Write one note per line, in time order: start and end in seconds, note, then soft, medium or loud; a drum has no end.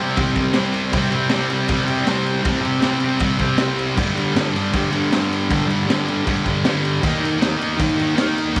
0.00 0.16 C3 medium
0.00 0.19 G3 medium
0.00 0.21 C4 medium
0.17 0.54 C3 medium
0.17 0.41 G3 medium
0.17 kick loud
0.17 crash medium
0.22 0.35 C4 loud
0.36 0.58 C4 medium
0.36 kick medium
0.36 crash medium
0.41 0.57 G3 medium
0.54 0.92 C3 medium
0.54 0.95 G3 medium
0.54 snare loud
0.54 crash medium
0.59 0.97 C4 medium
0.74 crash medium
0.92 1.31 C3 medium
0.92 1.15 G3 loud
0.92 kick loud
0.92 crash medium
0.98 1.11 C4 loud
1.11 1.35 C4 medium
1.11 crash medium
1.15 1.34 G3 medium
1.29 1.68 C3 medium
1.29 snare loud
1.29 crash medium
1.34 1.53 G3 medium
1.34 1.49 C4 medium
1.49 1.72 C4 medium
1.49 crash medium
1.54 1.71 G3 medium
1.68 2.03 C3 medium
1.68 1.90 G3 medium
1.68 kick loud
1.68 crash medium
1.73 1.84 C4 loud
1.85 2.08 C4 medium
1.85 crash medium
1.90 2.07 G3 medium
2.04 2.42 C3 medium
2.04 2.45 G3 medium
2.04 snare loud
2.04 crash medium
2.10 2.47 C4 medium
2.26 crash medium
2.43 2.80 C3 medium
2.43 2.67 G3 medium
2.43 kick loud
2.43 crash medium
2.48 2.61 C4 loud
2.63 2.84 C4 medium
2.63 crash medium
2.67 2.83 G3 medium
2.81 3.18 C3 medium
2.81 3.05 G3 medium
2.81 snare loud
2.81 crash medium
2.86 2.99 C4 medium
3.00 3.23 C4 medium
3.00 crash medium
3.05 3.21 G3 medium
3.19 3.57 C3 medium
3.19 3.42 G3 loud
3.19 kick loud
3.19 crash medium
3.24 3.37 C4 loud
3.39 3.61 C4 medium
3.39 kick medium
3.39 crash medium
3.43 3.61 G3 medium
3.58 3.96 C3 medium
3.58 3.99 G3 medium
3.58 snare loud
3.58 crash medium
3.63 3.98 C4 medium
3.79 crash medium
3.95 4.33 G2 medium
3.95 4.18 D3 medium
3.95 kick loud
3.95 crash medium
3.99 4.14 G3 medium
4.15 4.38 G3 medium
4.15 crash medium
4.19 4.36 D3 medium
4.34 4.71 G2 medium
4.34 4.56 D3 medium
4.34 snare loud
4.34 crash medium
4.39 4.52 G3 medium
4.53 4.77 G3 medium
4.53 crash medium
4.57 4.74 D3 medium
4.72 5.10 G2 medium
4.72 4.95 D3 loud
4.72 kick loud
4.72 crash medium
4.77 4.92 G3 loud
4.92 5.16 G3 medium
4.92 crash medium
4.96 5.13 D3 medium
5.11 5.48 G2 medium
5.11 5.50 D3 medium
5.11 snare loud
5.11 crash medium
5.16 5.53 G3 medium
5.33 crash medium
5.50 5.86 G2 loud
5.50 5.72 D3 medium
5.50 5.67 G3 medium
5.50 kick loud
5.50 crash medium
5.67 5.91 G3 medium
5.67 crash medium
5.73 5.88 D3 medium
5.87 6.24 G2 medium
5.87 6.09 D3 medium
5.87 snare loud
5.87 crash medium
5.92 6.05 G3 medium
6.05 6.30 G3 medium
6.05 crash medium
6.10 6.27 D3 medium
6.25 6.63 G2 medium
6.25 6.48 D3 loud
6.25 kick loud
6.25 crash medium
6.30 6.45 G3 loud
6.45 6.69 G3 medium
6.45 kick medium
6.45 crash medium
6.50 6.66 D3 medium
6.65 7.02 G2 medium
6.65 7.01 D3 medium
6.65 snare loud
6.65 crash medium
6.69 7.04 G3 medium
6.85 crash medium
7.02 7.39 D#3 loud
7.02 7.25 A#3 loud
7.02 kick loud
7.02 crash medium
7.07 7.20 D#4 loud
7.20 7.44 D#4 medium
7.25 7.42 A#3 medium
7.25 crash medium
7.39 7.77 D#3 medium
7.39 7.64 A#3 medium
7.39 snare loud
7.39 crash medium
7.45 7.58 D#4 medium
7.59 7.81 D#4 medium
7.59 crash medium
7.64 7.78 A#3 medium
7.77 8.15 D#3 medium
7.77 8.01 A#3 medium
7.77 kick loud
7.77 crash medium
7.81 7.97 D#4 loud
7.97 8.21 D#4 medium
7.97 crash medium
8.02 8.18 A#3 medium
8.16 8.53 D#3 medium
8.16 8.55 A#3 medium
8.16 snare loud
8.16 crash medium
8.21 8.57 D#4 medium
8.38 crash medium
8.54 8.60 D#3 loud
8.54 8.60 A#3 loud
8.54 kick loud